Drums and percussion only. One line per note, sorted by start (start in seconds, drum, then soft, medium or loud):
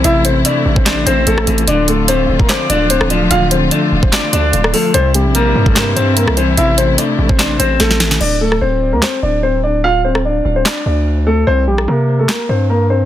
0.04 closed hi-hat medium
0.25 closed hi-hat medium
0.45 closed hi-hat medium
0.76 kick loud
0.86 snare loud
0.86 clap medium
0.86 closed hi-hat medium
1.07 closed hi-hat medium
1.27 closed hi-hat medium
1.38 cross-stick loud
1.47 closed hi-hat medium
1.47 open hi-hat medium
1.58 closed hi-hat medium
1.68 closed hi-hat medium
1.88 closed hi-hat medium
2.08 closed hi-hat medium
2.40 kick loud
2.49 snare loud
2.49 clap medium
2.49 closed hi-hat medium
2.70 closed hi-hat medium
2.90 closed hi-hat medium
3.01 cross-stick loud
3.10 closed hi-hat medium
3.31 closed hi-hat medium
3.51 closed hi-hat medium
3.71 closed hi-hat medium
4.03 kick loud
4.12 snare loud
4.12 clap medium
4.12 closed hi-hat medium
4.33 closed hi-hat medium
4.53 closed hi-hat medium
4.64 cross-stick loud
4.74 open hi-hat medium
4.94 closed hi-hat medium
5.14 closed hi-hat medium
5.35 closed hi-hat medium
5.66 kick loud
5.76 snare loud
5.76 clap medium
5.76 closed hi-hat medium
5.97 closed hi-hat medium
6.17 closed hi-hat medium
6.28 cross-stick loud
6.37 closed hi-hat medium
6.57 closed hi-hat medium
6.78 closed hi-hat medium
6.98 closed hi-hat medium
7.29 kick loud
7.39 snare loud
7.39 clap medium
7.39 closed hi-hat medium
7.60 closed hi-hat medium
7.80 snare medium
7.80 closed hi-hat medium
7.91 snare medium
8.00 snare loud
8.00 closed hi-hat medium
8.00 open hi-hat medium
8.11 snare loud
8.11 closed hi-hat medium
8.21 crash medium
8.52 cross-stick medium
9.02 snare loud
9.02 clap medium
10.15 cross-stick medium
10.65 snare loud
10.65 clap medium
11.78 cross-stick medium
12.29 snare loud
12.29 clap medium